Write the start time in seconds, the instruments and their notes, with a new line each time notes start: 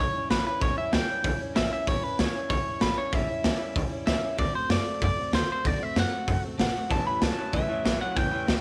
Already playing: steel-string acoustic guitar E3
0.00 steel-string acoustic guitar G3 C#4 E4, clean electric guitar C#5
0.13 steel-string acoustic guitar G3 C#4 E4, muted upright bass stroke
0.29 upright bass A1, steel-string acoustic guitar A2 E3 G3 C#4 E4, clean electric guitar B4, snare, open hi-hat
0.44 steel-string acoustic guitar G3 C#4 E4, clean electric guitar B4, muted upright bass stroke
0.60 upright bass A1, steel-string acoustic guitar A2 E3 G3 C#4 E4, clean electric guitar C#5, kick, open hi-hat
0.75 steel-string acoustic guitar G3 C#4 E4, clean electric guitar E5, muted upright bass stroke
0.91 upright bass C#2, steel-string acoustic guitar A2 E3 G3 C#4 E4, clean electric guitar G5, snare, open hi-hat
1.07 steel-string acoustic guitar G3 C#4 E4
1.23 upright bass C#2, steel-string acoustic guitar E3 G3 C#4 E4, kick, open hi-hat
1.39 steel-string acoustic guitar G3 C#4 E4, muted upright bass stroke
1.54 upright bass A1, steel-string acoustic guitar A2 E3 G3 C#4 E4, clean electric guitar E5, snare, open hi-hat
1.70 steel-string acoustic guitar G3 C#4 E4, clean electric guitar E5, muted upright bass stroke
1.86 upright bass A1, steel-string acoustic guitar A2 E3 G3 C#4 E4, clean electric guitar C#5, kick, open hi-hat
2.01 steel-string acoustic guitar G3 C#4 E4, clean electric guitar B4, muted upright bass stroke
2.18 upright bass C#2, steel-string acoustic guitar A2 E3 G3 C#4 E4, clean electric guitar C#5, snare, open hi-hat
2.33 steel-string acoustic guitar G3 C#4 E4, muted upright bass stroke
2.48 upright bass C#2, steel-string acoustic guitar E3 G3 C#4 E4, clean electric guitar C#5, kick, open hi-hat
2.65 steel-string acoustic guitar G3 C#4 E4, muted upright bass stroke
2.80 upright bass A1, steel-string acoustic guitar A2 E3 G3 C#4 E4, clean electric guitar B4, snare, open hi-hat
2.96 steel-string acoustic guitar G3 C#4 E4, clean electric guitar C#5, muted upright bass stroke
3.11 upright bass A1, steel-string acoustic guitar A2 E3 G3 C#4 E4, clean electric guitar E5, kick, open hi-hat
3.27 steel-string acoustic guitar G3 C#4 E4, muted upright bass stroke
3.43 upright bass C#2, steel-string acoustic guitar A2 E3 G3 C#4 E4, snare, open hi-hat
3.58 steel-string acoustic guitar G3 C#4 E4, muted upright bass stroke
3.74 upright bass C#2, steel-string acoustic guitar E3 G3 C#4 E4, kick, open hi-hat
3.89 steel-string acoustic guitar G3 C#4 E4, muted upright bass stroke
4.05 upright bass C#2, steel-string acoustic guitar A2 E3 G3 C#4 E4, clean electric guitar E5, snare, open hi-hat
4.21 steel-string acoustic guitar G3 C#4 E4, muted upright bass stroke
4.37 upright bass D2, steel-string acoustic guitar D3 A3 C4 F#4, clean electric guitar D5, kick, open hi-hat
4.53 steel-string acoustic guitar A3 C4 F#4, clean electric guitar C5, muted upright bass stroke
4.69 upright bass F#2, steel-string acoustic guitar D3 A3 C4 F#4, clean electric guitar D5, snare, open hi-hat
4.84 steel-string acoustic guitar A3 C4 F#4, muted upright bass stroke
4.99 upright bass F#2, steel-string acoustic guitar D3 A3 C4 F#4, kick, open hi-hat
5.04 clean electric guitar D5
5.16 steel-string acoustic guitar A3 C4 F#4, muted upright bass stroke
5.32 upright bass D2, steel-string acoustic guitar D3 A3 C4 F#4, clean electric guitar C5, snare, open hi-hat
5.47 steel-string acoustic guitar A3 C4 F#4, muted upright bass stroke
5.52 clean electric guitar C5
5.64 upright bass D2, steel-string acoustic guitar D3 A3 C4 F#4, clean electric guitar D5, kick, open hi-hat
5.80 steel-string acoustic guitar A3 C4 F#4, clean electric guitar E5, muted upright bass stroke
5.95 upright bass F#2, steel-string acoustic guitar D3 A3 C4 F#4, snare, open hi-hat
5.99 clean electric guitar F#5
6.11 steel-string acoustic guitar A3 C4 F#4
6.26 upright bass F#2, steel-string acoustic guitar D3 A3 C4 F#4, kick, open hi-hat
6.42 steel-string acoustic guitar A3 C4 F#4, muted upright bass stroke
6.57 upright bass G#1, steel-string acoustic guitar D3 A3 C4 F#4, clean electric guitar F#5, snare, open hi-hat
6.73 steel-string acoustic guitar A3 C4 F#4, muted upright bass stroke
6.89 upright bass A1, steel-string acoustic guitar A2 E3 G3 C#4 E4, clean electric guitar A2 E3 A5, kick, open hi-hat
7.06 clean electric guitar A2 E3 B5, steel-string acoustic guitar G3 C#4 E4, muted upright bass stroke
7.21 upright bass C#2, clean electric guitar A2 F#3 A5, steel-string acoustic guitar A2 E3 G3 C#4 E4, snare, open hi-hat
7.37 clean electric guitar A2 F#3, steel-string acoustic guitar G3 C#4 E4
7.52 upright bass C#2, clean electric guitar A2 E3 E5, steel-string acoustic guitar E3 G3 C#4 E4, kick, open hi-hat
7.68 clean electric guitar A2 E3, steel-string acoustic guitar G3 C#4 E4, muted upright bass stroke
7.84 upright bass A1, clean electric guitar A2 F#3, steel-string acoustic guitar A2 E3 G3 C#4 E4, snare, open hi-hat
8.00 clean electric guitar A2 F#3 F#5, steel-string acoustic guitar G3 C#4 E4, muted upright bass stroke
8.16 upright bass A1, steel-string acoustic guitar A2 E3 G3 C#4 E4, clean electric guitar A2 E3 G5, kick, open hi-hat
8.31 clean electric guitar A2 E3, steel-string acoustic guitar G3 C#4 E4, muted upright bass stroke
8.46 upright bass C#2, steel-string acoustic guitar A2 E3 G3 C#4 E4, clean electric guitar A2 F#3, snare, open hi-hat